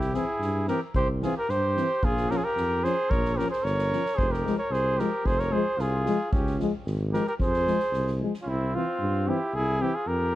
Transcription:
Already playing: tuba C2, trumpet E4, flugelhorn G4
0.01 snare
0.13 euphonium E3, french horn C4, trumpet E4, flugelhorn G#4, snare
0.40 tuba G2, snare
0.67 euphonium E3, french horn C4, trumpet G4, flugelhorn A#4, snare
0.94 tuba C2, trumpet G4, flugelhorn C5, kick
1.22 euphonium E3, french horn C4, trumpet F4, flugelhorn G#4, snare
1.37 trumpet G4, flugelhorn A#4
1.49 tuba G2, trumpet G4, flugelhorn C5, snare
1.76 euphonium E3, french horn C4, snare
2.02 tuba A#1, trumpet F4, flugelhorn G#4, kick
2.17 snare
2.29 euphonium F3, french horn C#4, trumpet G4, flugelhorn A#4, snare
2.36 trumpet F4, flugelhorn G#4
2.44 trumpet G4, flugelhorn A#4
2.56 tuba F2, snare
2.84 euphonium F3, french horn C#4, trumpet G#4, flugelhorn C5, snare
3.10 tuba A#1, trumpet A#4, flugelhorn C#5, kick
3.25 snare
3.36 euphonium F3, french horn C#4, trumpet G4, flugelhorn A#4, snare
3.49 trumpet G#4, flugelhorn C5, snare
3.62 tuba G1, trumpet A#4, flugelhorn C#5, snare
3.78 snare
3.91 euphonium F3, french horn C#4, snare
4.06 snare
4.15 tuba F1, trumpet G#4, flugelhorn C5, kick
4.29 trumpet G4, flugelhorn A#4
4.33 snare
4.45 euphonium F3, french horn G#3, snare
4.58 trumpet A#4, flugelhorn C#5
4.71 tuba C2, trumpet G#4, flugelhorn C5, snare
4.97 euphonium F3, french horn G#3, trumpet G4, flugelhorn A#4, snare
5.24 tuba F1, trumpet G#4, flugelhorn C5, kick
5.39 trumpet A#4, flugelhorn C#5, snare
5.52 euphonium F3, french horn G#3, trumpet G#4, flugelhorn C5
5.78 tuba C2, trumpet F4, flugelhorn G#4, snare
6.06 euphonium F3, french horn G#3, snare
6.31 tuba C#2, trumpet C#4, flugelhorn G4, kick
6.46 snare
6.59 euphonium F3, french horn G#3, snare
6.86 tuba G#1, snare
7.12 euphonium F3, french horn G#3, trumpet G4, flugelhorn A#4, snare
7.27 trumpet G4, flugelhorn A#4
7.39 tuba F2, trumpet G#4, flugelhorn C5, kick
7.53 snare
7.67 euphonium F3, french horn G#3, snare
7.79 snare
7.92 tuba C2, snare
8.07 snare
8.21 euphonium F3, french horn G#3
8.33 snare
8.41 trumpet C#4, flugelhorn F4
8.46 tuba C2, trumpet C4, flugelhorn E4
8.74 euphonium E3, french horn C4, trumpet C4, flugelhorn F4
9.00 tuba G2
9.27 euphonium E3, french horn C4, trumpet E4, flugelhorn G4
9.54 tuba C2, trumpet E4, flugelhorn G#4
9.81 euphonium E3, french horn C4, trumpet E4, flugelhorn G4
9.94 trumpet F4, flugelhorn G#4
10.07 tuba F2, trumpet G4, flugelhorn A#4

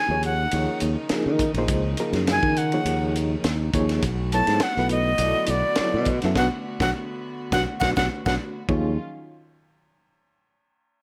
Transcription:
Already playing: string section C#3 D#3 F3 D#4, flute G#5
0.09 fingered electric bass D#2, reed electric piano F3 A#3 D#4 G#4 C#5
0.23 flute F#5, hi-hat pedal, ride
0.51 fingered electric bass D#2, reed electric piano F3 A#3 D#4 G#4 C#5, hi-hat pedal, ride
0.80 fingered electric bass D#2, hi-hat pedal, ride
1.09 reed electric piano F3 A#3 D#4 G#4 A#4, muted fingered electric bass stroke, snare, hi-hat pedal, ride
1.26 fingered electric bass D#3
1.39 kick, hi-hat pedal, ride
1.54 fingered electric bass A#1, reed electric piano A#3 D#4 C5, ride
1.58 reed electric piano F3 G#4
1.68 fingered electric bass C#2, kick, hi-hat pedal, ride
1.97 reed electric piano F3 A#3 D#4 G#4 A#4, hi-hat pedal, ride
2.13 fingered electric bass F#2, snare, ride
2.27 snare, hi-hat pedal, ride
2.32 flute G#5
2.43 fingered electric bass D#3, kick
2.56 flute F#5, hi-hat pedal, ride
2.72 reed electric piano F3 A#3 D#4 G#4 C#5, ride
2.85 fingered electric bass D#2, hi-hat pedal, ride
3.15 hi-hat pedal, ride
3.44 fingered electric bass D#2, snare, hi-hat pedal, ride
3.73 fingered electric bass D#2, reed electric piano F3 A#3 D#4 G#4 C#5, kick, hi-hat pedal, ride
3.89 snare, ride
4.02 fingered electric bass B1, string section D3 A3 B3 F#4, kick, hi-hat pedal, ride
4.32 reed electric piano F#3 B3 E4 A4 C#5, flute A5, hi-hat pedal, ride
4.47 fingered electric bass G#2, snare, ride
4.60 flute F#5, snare, hi-hat pedal, ride
4.76 fingered electric bass B1, reed electric piano F#3 B3 E4 A4 B4, snare
4.89 flute D#5, hi-hat pedal, ride
5.18 fingered electric bass B1, reed electric piano F#3 B3 A4 D5, hi-hat pedal, ride
5.22 reed electric piano E4
5.46 fingered electric bass B1, flute D5, hi-hat pedal, ride
5.75 muted fingered electric bass stroke, snare, hi-hat pedal, ride
5.80 reed electric piano F#3 B3 E4 A4 C#5
5.94 fingered electric bass B2
6.05 kick, hi-hat pedal, ride
6.22 fingered electric bass F#2, reed electric piano F#3 B3 E4 A4 E5, snare, ride
6.35 fingered electric bass B1, reed electric piano B3 D4 F#4, flute F#5, kick, snare
6.80 fingered electric bass B1, reed electric piano B3 D4 F#4, flute F#5, kick, snare
7.52 fingered electric bass B1, reed electric piano B3 D4 F#4, flute F#5, kick, snare
7.80 fingered electric bass B1, reed electric piano B3 D4 F#4, flute F#5, kick, snare
7.96 fingered electric bass B1, reed electric piano B3 D4 F#4, flute F#5, kick, snare
8.26 fingered electric bass B1, reed electric piano B3 D4 F#4, flute F#5, kick, snare
8.69 fingered electric bass D#2, string section D#3 F#3 C#4 F4, reed electric piano F3 A#3 D#4 G#4 C#5, kick

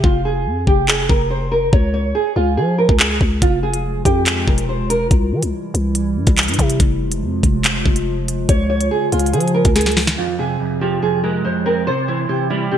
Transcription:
0.04 808-style bass F1, nylon-string guitar F4, kick
0.25 nylon-string guitar G#4
0.46 808-style bass F2
0.67 808-style bass F1, nylon-string guitar G4, kick
0.88 nylon-string guitar G#4, clap
1.09 808-style bass F1, nylon-string guitar A#4, kick
1.30 nylon-string guitar C5
1.52 nylon-string guitar A#4
1.73 808-style bass C#2, nylon-string guitar C#5, kick
1.94 nylon-string guitar C#5
2.15 nylon-string guitar G#4
2.36 808-style bass C#2, nylon-string guitar F4
2.57 808-style bass F3, nylon-string guitar G#4
2.78 nylon-string guitar A#4
2.89 808-style bass C#2, kick
3.00 nylon-string guitar G#4, clap
3.21 808-style bass C#2, kick
3.42 808-style bass F1, ambient pad C3 F3 G#3 F4, nylon-string guitar F4, kick, closed hi-hat
3.63 nylon-string guitar G#4
3.74 closed hi-hat
4.05 808-style bass F2, nylon-string guitar G4, kick, closed hi-hat
4.26 clap, closed hi-hat
4.48 808-style bass E1, nylon-string guitar A#4, kick
4.58 closed hi-hat
4.69 nylon-string guitar C5
4.90 nylon-string guitar A#4, closed hi-hat
5.11 808-style bass C2, ambient pad E3 G3 E4, kick, closed hi-hat
5.32 808-style bass E3
5.43 808-style bass C2, closed hi-hat
5.74 808-style bass C2, closed hi-hat
5.95 closed hi-hat
6.17 808-style bass G2
6.27 808-style bass C2, kick, closed hi-hat
6.38 clap, closed hi-hat
6.43 closed hi-hat
6.48 808-style bass G2, closed hi-hat
6.54 closed hi-hat
6.59 808-style bass C3, kick, closed hi-hat
6.70 closed hi-hat
6.80 808-style bass F1, ambient pad F3 G#3 F4, kick, closed hi-hat
7.12 closed hi-hat
7.22 808-style bass F2
7.43 808-style bass F1, kick, closed hi-hat
7.64 clap, closed hi-hat
7.86 808-style bass F1, kick
7.96 closed hi-hat
8.28 closed hi-hat
8.49 808-style bass C#2, ambient pad C#3 F4, nylon-string guitar C#5, kick, closed hi-hat
8.70 nylon-string guitar C#5
8.81 closed hi-hat
8.91 nylon-string guitar G#4
9.12 808-style bass C#2, nylon-string guitar F4, closed hi-hat
9.19 closed hi-hat
9.26 closed hi-hat
9.33 808-style bass F3, nylon-string guitar G#4, closed hi-hat
9.41 closed hi-hat
9.48 closed hi-hat
9.54 nylon-string guitar A#4
9.65 808-style bass C#2, kick, closed hi-hat
9.76 nylon-string guitar G#4, snare, closed hi-hat
9.81 closed hi-hat
9.86 snare, closed hi-hat
9.92 closed hi-hat
9.97 snare, open hi-hat
10.07 snare, closed hi-hat
10.18 clean electric guitar F2, nylon-string guitar F4
10.39 clean electric guitar C3, nylon-string guitar G#4
10.60 clean electric guitar F2
10.81 clean electric guitar F3, nylon-string guitar G4
11.02 clean electric guitar F2, nylon-string guitar G#4
11.24 clean electric guitar G#3, nylon-string guitar A#4
11.45 clean electric guitar F2, nylon-string guitar C5
11.66 clean electric guitar C4, nylon-string guitar A#4
11.87 clean electric guitar C3, nylon-string guitar C5
12.08 clean electric guitar E3, nylon-string guitar C5
12.29 clean electric guitar C3, nylon-string guitar G4
12.50 clean electric guitar G3, nylon-string guitar E4
12.71 clean electric guitar C3, nylon-string guitar G4

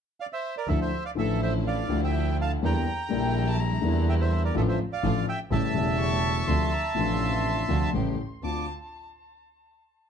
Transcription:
0.20 bandoneon D5 F5
0.33 bandoneon C5 E5
0.57 bandoneon A#4 D5
0.67 double bass D2, grand piano D2 D3 F3 A3 E4, string section F3 D4 E4, bandoneon A4 E5
0.81 bandoneon C5 E5
1.05 bandoneon D5 F5
1.15 grand piano A1 A2 D3 F3 A3 E4, double bass A1, string section F3 D4 E4, bandoneon E5
1.19 bandoneon A4
1.42 bandoneon C5 E5
1.67 bandoneon D5 F5
1.89 double bass D2, grand piano D2 D3 F3 A3 E4, string section F3 D4 E4
2.04 bandoneon E5 G5
2.41 bandoneon F5 A5
2.62 grand piano E2 D3 E3 G3 A#3 E4, double bass E2, string section G3 D4 E4, bandoneon G5 A#5
3.09 grand piano A#1 A#2 D3 G3 A#3, double bass A#1, string section G3 D4 E4, violin G5
3.13 grand piano E4
3.48 violin A5
3.60 violin A#5
3.81 grand piano E2 D3 E3 G3 A#3, double bass E2, string section G3 D4 E4
3.85 grand piano E4
4.09 bandoneon E5 G5
4.21 bandoneon C5 E5
4.45 bandoneon A#4 D5
4.54 grand piano A1 A2 D3 F3 A3 F4, double bass A1, string section A3 D4 F4, bandoneon A4 E5
4.68 bandoneon C5 E5
4.93 bandoneon D5 F5
5.03 grand piano A1 A2 D3 F3 A3 F4, double bass A1, string section A3 D4 F4
5.28 bandoneon E5 G5
5.51 double bass A1, grand piano A1 A2 C#3 G3 A3 E4, string section A3 C#4 G4, bandoneon E5 A5
5.73 grand piano E1 E2 C#3 G3 A3, double bass E1, string section A3 C#4 G4
5.78 grand piano E4
6.00 violin C#6
6.47 double bass D2, grand piano D2 C3 D3 F3 A3 D4, string section C4 D4 F4, violin C6
6.73 violin A#5
6.95 double bass A1, grand piano A1 A2 C3 F3 A3, string section C4 D4 F4, violin C6
6.99 grand piano D4
7.69 grand piano D2 C3 D3 F3 A3 D4, double bass D2, string section C4 D4 F4
7.93 double bass A1, grand piano A1 A2 C#3 G3 A3 E4, string section A3 C#4 G4
8.42 double bass D2, grand piano D2 C4 D4 F4, string section C4 D4 F4, violin A5, bandoneon D6

